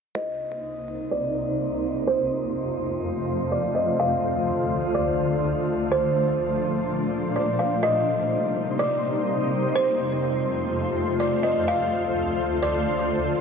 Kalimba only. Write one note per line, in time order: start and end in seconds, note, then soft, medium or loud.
0.15 1.07 D#5 loud
1.11 1.57 D5 medium
2.07 3.48 C5 loud
3.52 3.75 D5 medium
3.75 3.98 D#5 medium
4.00 4.92 F5 loud
4.95 5.40 D5 medium
5.92 7.32 C5 loud
7.36 7.59 D5 medium
7.59 7.82 F5 medium
7.83 8.75 D#5 loud
8.79 9.25 D5 medium
9.76 11.16 C5 loud
11.20 11.43 D5 medium
11.43 11.66 D#5 medium
11.68 12.60 F5 loud
12.63 13.08 D5 medium